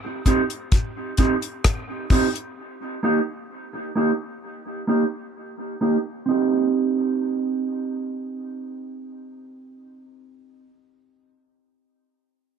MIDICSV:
0, 0, Header, 1, 4, 480
1, 0, Start_track
1, 0, Key_signature, -3, "minor"
1, 0, Tempo, 924357
1, 1335, Time_signature, 4, 2, 24, 8
1, 6536, End_track
2, 0, Start_track
2, 0, Title_t, "Clean electric guitar"
2, 0, Program_c, 0, 27
2, 136, Note_on_c, 0, 60, 74
2, 138, Note_on_c, 0, 63, 85
2, 143, Note_on_c, 0, 67, 93
2, 212, Note_off_c, 0, 60, 0
2, 214, Note_off_c, 0, 63, 0
2, 216, Note_off_c, 0, 67, 0
2, 613, Note_on_c, 0, 60, 81
2, 620, Note_on_c, 0, 63, 95
2, 623, Note_on_c, 0, 67, 87
2, 691, Note_off_c, 0, 60, 0
2, 694, Note_off_c, 0, 63, 0
2, 696, Note_off_c, 0, 67, 0
2, 1094, Note_on_c, 0, 60, 78
2, 1100, Note_on_c, 0, 63, 94
2, 1105, Note_on_c, 0, 67, 98
2, 1172, Note_off_c, 0, 60, 0
2, 1174, Note_off_c, 0, 63, 0
2, 1177, Note_off_c, 0, 67, 0
2, 1573, Note_on_c, 0, 58, 73
2, 1579, Note_on_c, 0, 63, 89
2, 1582, Note_on_c, 0, 67, 100
2, 1651, Note_off_c, 0, 58, 0
2, 1654, Note_off_c, 0, 63, 0
2, 1656, Note_off_c, 0, 67, 0
2, 2054, Note_on_c, 0, 58, 76
2, 2060, Note_on_c, 0, 63, 82
2, 2063, Note_on_c, 0, 67, 84
2, 2131, Note_off_c, 0, 58, 0
2, 2134, Note_off_c, 0, 63, 0
2, 2136, Note_off_c, 0, 67, 0
2, 2531, Note_on_c, 0, 58, 83
2, 2536, Note_on_c, 0, 63, 78
2, 2542, Note_on_c, 0, 67, 83
2, 2610, Note_off_c, 0, 58, 0
2, 2613, Note_off_c, 0, 63, 0
2, 2615, Note_off_c, 0, 67, 0
2, 3017, Note_on_c, 0, 58, 74
2, 3021, Note_on_c, 0, 63, 74
2, 3025, Note_on_c, 0, 67, 83
2, 3093, Note_off_c, 0, 58, 0
2, 3095, Note_off_c, 0, 63, 0
2, 3097, Note_off_c, 0, 67, 0
2, 3250, Note_on_c, 0, 60, 74
2, 3265, Note_on_c, 0, 63, 83
2, 3275, Note_on_c, 0, 67, 77
2, 5536, Note_off_c, 0, 60, 0
2, 5551, Note_off_c, 0, 63, 0
2, 5561, Note_off_c, 0, 67, 0
2, 6536, End_track
3, 0, Start_track
3, 0, Title_t, "Muted clean electric guitar strokes"
3, 25, Note_on_c, 9, 29, 38
3, 76, Note_off_c, 9, 29, 0
3, 1939, Note_on_c, 9, 29, 42
3, 1991, Note_off_c, 9, 29, 0
3, 6536, End_track
4, 0, Start_track
4, 0, Title_t, "Drums"
4, 134, Note_on_c, 9, 36, 81
4, 135, Note_on_c, 9, 42, 69
4, 186, Note_off_c, 9, 36, 0
4, 187, Note_off_c, 9, 42, 0
4, 260, Note_on_c, 9, 42, 48
4, 312, Note_off_c, 9, 42, 0
4, 372, Note_on_c, 9, 42, 71
4, 374, Note_on_c, 9, 36, 109
4, 424, Note_off_c, 9, 42, 0
4, 426, Note_off_c, 9, 36, 0
4, 609, Note_on_c, 9, 42, 67
4, 615, Note_on_c, 9, 36, 80
4, 661, Note_off_c, 9, 42, 0
4, 667, Note_off_c, 9, 36, 0
4, 739, Note_on_c, 9, 42, 49
4, 791, Note_off_c, 9, 42, 0
4, 854, Note_on_c, 9, 37, 92
4, 854, Note_on_c, 9, 42, 84
4, 856, Note_on_c, 9, 36, 108
4, 905, Note_off_c, 9, 42, 0
4, 906, Note_off_c, 9, 37, 0
4, 907, Note_off_c, 9, 36, 0
4, 1091, Note_on_c, 9, 46, 70
4, 1092, Note_on_c, 9, 36, 87
4, 1143, Note_off_c, 9, 46, 0
4, 1144, Note_off_c, 9, 36, 0
4, 1224, Note_on_c, 9, 42, 55
4, 1276, Note_off_c, 9, 42, 0
4, 6536, End_track
0, 0, End_of_file